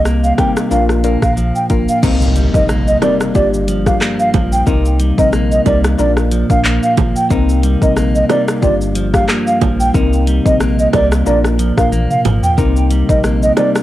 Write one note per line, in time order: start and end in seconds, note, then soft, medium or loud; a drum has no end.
0.00 0.33 C2 medium
0.00 0.79 C3 medium
0.00 0.37 G3 medium
0.00 0.31 C4 medium
0.00 0.31 D#4 medium
0.00 0.31 A#4 loud
0.05 1.04 A#3 medium
0.05 cross-stick medium
0.05 shaker medium
0.24 0.34 F5 medium
0.24 shaker soft
0.38 0.79 G3 medium
0.38 0.69 C4 medium
0.38 0.69 D#4 medium
0.38 0.69 A#4 medium
0.38 0.51 G5 medium
0.38 kick medium
0.38 cross-stick medium
0.38 closed hi-hat medium
0.38 shaker soft
0.57 cross-stick loud
0.57 shaker medium
0.71 1.17 A#1 loud
0.71 2.11 A#2 medium
0.71 1.02 D4 loud
0.71 1.02 F4 medium
0.71 1.02 A#4 loud
0.71 0.84 F5 medium
0.71 shaker medium
0.89 cross-stick medium
0.89 shaker soft
1.04 1.70 A#3 medium
1.04 1.26 D4 medium
1.04 1.26 F4 medium
1.04 1.26 A#4 medium
1.04 closed hi-hat medium
1.04 shaker medium
1.22 1.52 A#1 medium
1.22 1.33 F5 medium
1.22 kick medium
1.22 cross-stick medium
1.22 shaker medium
1.37 2.11 F3 medium
1.37 shaker medium
1.56 1.65 G5 medium
1.56 shaker soft
1.70 1.86 A#1 medium
1.70 2.69 A#3 medium
1.70 1.92 D4 medium
1.70 1.92 F4 medium
1.70 1.92 A#4 medium
1.70 kick loud
1.70 closed hi-hat medium
1.70 shaker soft
1.89 1.99 F5 medium
1.89 shaker medium
2.03 2.48 C2 loud
2.03 3.42 C3 medium
2.03 2.50 C4 loud
2.03 2.50 D#4 medium
2.03 3.43 D#4 medium
2.03 2.50 A#4 loud
2.03 kick loud
2.03 crash loud
2.03 impact medium
2.03 shaker medium
2.22 shaker medium
2.36 3.02 G3 medium
2.36 closed hi-hat medium
2.36 shaker medium
2.54 2.96 A#1 loud
2.54 2.98 C4 medium
2.54 2.99 D#4 medium
2.54 2.99 A#4 medium
2.54 2.64 D#5 medium
2.54 kick loud
2.54 shaker medium
2.69 4.01 A#3 medium
2.69 cross-stick medium
2.69 shaker medium
2.88 2.97 D#5 medium
2.88 shaker soft
3.02 3.68 G3 medium
3.02 3.32 C4 medium
3.02 3.33 D#4 medium
3.02 3.33 A#4 medium
3.02 3.15 D5 medium
3.02 cross-stick medium
3.02 closed hi-hat medium
3.02 high bongo medium
3.02 low bongo medium
3.02 shaker soft
3.21 cross-stick medium
3.21 shaker medium
3.35 3.93 G1 loud
3.35 4.74 G2 medium
3.35 3.57 A#3 medium
3.35 3.57 F4 medium
3.35 3.57 G4 loud
3.35 3.48 D5 medium
3.35 kick medium
3.35 shaker medium
3.54 shaker medium
3.68 4.33 F3 medium
3.68 closed hi-hat medium
3.68 shaker medium
3.86 4.05 A#3 medium
3.86 4.05 F4 medium
3.86 4.05 G4 medium
3.86 3.96 F5 medium
3.86 kick loud
3.86 cross-stick medium
3.86 shaker medium
4.01 5.32 A#3 medium
4.01 cross-stick medium
4.01 clap medium
4.01 shaker medium
4.19 4.29 F5 medium
4.19 shaker soft
4.34 4.63 A#1 medium
4.34 4.74 F3 medium
4.34 kick loud
4.34 closed hi-hat medium
4.34 high bongo medium
4.34 low bongo medium
4.34 shaker soft
4.52 4.62 G5 medium
4.52 shaker medium
4.67 5.12 C2 loud
4.67 6.06 C3 medium
4.67 5.14 C4 loud
4.67 5.14 D#4 medium
4.67 6.06 D#4 medium
4.67 5.14 A#4 loud
4.67 kick loud
4.67 shaker medium
4.85 shaker medium
5.00 5.65 G3 medium
5.00 closed hi-hat medium
5.00 shaker medium
5.18 5.60 A#1 medium
5.18 5.62 C4 medium
5.18 5.62 D#4 medium
5.18 5.62 A#4 medium
5.18 5.28 D#5 medium
5.18 kick loud
5.18 shaker medium
5.33 6.64 A#3 medium
5.33 cross-stick medium
5.33 shaker medium
5.51 5.61 D#5 medium
5.51 shaker soft
5.65 5.95 C2 medium
5.65 6.06 G3 medium
5.65 5.96 C4 medium
5.65 5.96 D#4 medium
5.65 5.97 A#4 medium
5.65 5.78 D5 medium
5.65 kick medium
5.65 closed hi-hat medium
5.65 high bongo medium
5.65 low bongo medium
5.65 shaker soft
5.84 cross-stick loud
5.84 shaker medium
5.98 6.44 A#1 loud
5.98 7.38 A#2 medium
5.98 6.20 D4 loud
5.98 6.20 F4 medium
5.98 6.21 A#4 loud
5.98 6.11 D5 medium
5.98 shaker medium
6.17 cross-stick medium
6.17 shaker medium
6.32 6.96 F3 medium
6.32 closed hi-hat medium
6.32 shaker medium
6.50 6.79 A#1 loud
6.50 6.69 D4 medium
6.50 6.69 F4 medium
6.50 6.69 A#4 medium
6.50 6.60 F5 medium
6.50 kick medium
6.50 shaker medium
6.65 7.96 A#3 medium
6.65 clap medium
6.65 shaker medium
6.83 6.93 F5 medium
6.83 shaker medium
6.98 7.14 G#1 medium
6.98 7.38 F3 medium
6.98 kick loud
6.98 closed hi-hat medium
6.98 high bongo medium
6.98 low bongo medium
6.98 shaker medium
7.16 7.26 G5 medium
7.16 shaker medium
7.30 7.76 C2 loud
7.30 8.70 C3 medium
7.30 7.78 C4 loud
7.30 7.78 D#4 medium
7.30 8.70 D#4 medium
7.30 7.78 A#4 loud
7.30 kick loud
7.30 shaker medium
7.49 shaker medium
7.63 8.29 G3 medium
7.63 closed hi-hat medium
7.63 shaker medium
7.82 8.24 A#1 medium
7.82 8.26 C4 medium
7.82 8.26 D#4 medium
7.82 8.26 A#4 medium
7.82 7.92 D#5 medium
7.82 kick loud
7.82 shaker medium
7.97 9.28 A#3 medium
7.97 cross-stick medium
7.97 shaker medium
8.15 8.25 D#5 medium
8.15 shaker soft
8.29 8.95 G3 medium
8.29 8.60 C4 medium
8.29 8.60 D#4 medium
8.29 8.60 A#4 medium
8.29 8.42 D5 medium
8.29 cross-stick medium
8.29 closed hi-hat medium
8.29 high bongo medium
8.29 low bongo medium
8.29 shaker medium
8.48 cross-stick loud
8.48 shaker medium
8.62 9.21 G1 loud
8.62 10.02 G2 medium
8.62 8.84 A#3 loud
8.62 8.84 F4 medium
8.62 8.84 G4 loud
8.62 8.75 D5 medium
8.62 kick medium
8.62 shaker medium
8.81 shaker soft
8.95 9.60 F3 medium
8.95 closed hi-hat medium
8.95 shaker medium
9.14 9.32 A#3 medium
9.14 9.32 F4 medium
9.14 9.33 G4 medium
9.14 9.24 F5 medium
9.14 kick medium
9.14 cross-stick loud
9.14 shaker medium
9.29 10.60 A#3 medium
9.29 cross-stick medium
9.29 clap medium
9.29 shaker medium
9.47 9.57 F5 medium
9.47 shaker medium
9.61 9.91 A#1 medium
9.61 10.02 F3 medium
9.61 kick loud
9.61 closed hi-hat medium
9.61 high bongo medium
9.61 low bongo medium
9.61 shaker soft
9.80 9.90 G5 medium
9.80 shaker medium
9.94 10.40 C2 loud
9.94 11.34 C3 medium
9.94 10.41 C4 loud
9.94 10.41 D#4 medium
9.94 11.34 D#4 medium
9.94 10.42 A#4 loud
9.94 kick loud
9.94 shaker medium
10.13 shaker medium
10.27 10.92 G3 medium
10.27 closed hi-hat medium
10.27 shaker medium
10.46 10.87 A#1 medium
10.46 10.90 C4 medium
10.46 10.90 D#4 medium
10.46 10.90 A#4 medium
10.46 10.56 D#5 medium
10.46 kick loud
10.46 shaker medium
10.60 11.92 A#3 medium
10.60 cross-stick medium
10.60 shaker medium
10.79 10.89 D#5 medium
10.79 shaker soft
10.93 11.23 C2 loud
10.93 11.34 G3 medium
10.93 11.24 C4 medium
10.93 11.24 D#4 medium
10.93 11.24 A#4 medium
10.93 11.06 D5 medium
10.93 kick medium
10.93 cross-stick medium
10.93 closed hi-hat medium
10.93 high bongo medium
10.93 low bongo medium
10.93 shaker medium
11.12 cross-stick loud
11.12 shaker medium
11.26 11.72 A#1 loud
11.26 12.65 A#2 medium
11.26 11.48 D4 medium
11.26 11.48 F4 medium
11.26 11.48 A#4 loud
11.26 11.39 D5 medium
11.26 shaker medium
11.44 cross-stick medium
11.44 shaker medium
11.59 12.24 F3 medium
11.59 closed hi-hat medium
11.59 shaker medium
11.77 12.07 A#1 loud
11.77 11.96 D4 medium
11.77 11.96 F4 medium
11.77 11.96 A#4 medium
11.77 11.87 F5 medium
11.77 kick medium
11.77 cross-stick medium
11.77 shaker medium
11.92 13.24 A#3 medium
11.92 high tom medium
11.92 shaker medium
12.10 12.20 F5 medium
12.10 mid tom medium
12.10 shaker medium
12.25 12.41 G#1 medium
12.25 12.65 F3 medium
12.25 closed hi-hat medium
12.25 mid tom medium
12.25 high bongo medium
12.25 low bongo medium
12.25 shaker medium
12.43 12.53 G5 medium
12.43 floor tom loud
12.43 shaker medium
12.58 13.03 C2 loud
12.58 13.83 C3 medium
12.58 13.05 C4 medium
12.58 13.05 D#4 medium
12.58 13.83 D#4 medium
12.58 13.05 A#4 loud
12.58 kick loud
12.58 shaker medium
12.77 shaker medium
12.91 13.57 G3 medium
12.91 closed hi-hat medium
12.91 shaker medium
13.09 13.51 A#1 medium
13.09 13.53 C4 medium
13.09 13.53 D#4 medium
13.09 13.54 A#4 medium
13.09 13.19 D#5 medium
13.09 kick loud
13.09 shaker medium
13.24 13.83 A#3 medium
13.24 cross-stick medium
13.24 shaker medium
13.42 13.52 D#5 medium
13.42 shaker soft
13.57 13.83 G3 medium
13.57 13.83 C4 medium
13.57 13.83 D#4 medium
13.57 13.83 A#4 medium
13.57 13.69 D5 medium
13.57 cross-stick medium
13.57 closed hi-hat medium
13.57 high bongo medium
13.57 low bongo medium
13.57 shaker medium
13.75 cross-stick loud
13.75 shaker medium